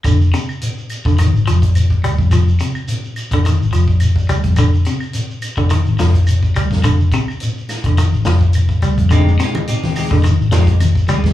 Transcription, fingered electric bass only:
X:1
M:4/4
L:1/16
Q:"Swing 16ths" 1/4=106
K:Fdor
V:1 name="Fingered electric bass" clef=bass
F,,,2 z4 z F,,,2 A,,, F,,,4 D,, F,, | F,,,2 z4 z F,,,2 A,,, F,,,4 D,, F,, | F,,,2 z4 z F,,,2 A,,, F,,,4 D,, F,, | F,,,2 z4 z F,,,2 A,,, F,,,4 D,, F,, |
F,,,2 z4 z F,,,2 A,,, F,,,4 D,, F,, |]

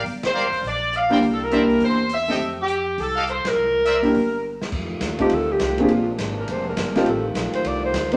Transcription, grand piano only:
X:1
M:4/4
L:1/8
Q:"Swing" 1/4=205
K:Fmix
V:1 name="Grand piano"
z6 z [B,D=EG] | z2 [B,D=EG]3 z2 [A,C_EG] | z8 | z3 [B,D=EG] z4 |
z3 [A,CEFG] z3 [B,CDF_A] | z6 z [A,CEFG] | z6 z [B,CDEG] |]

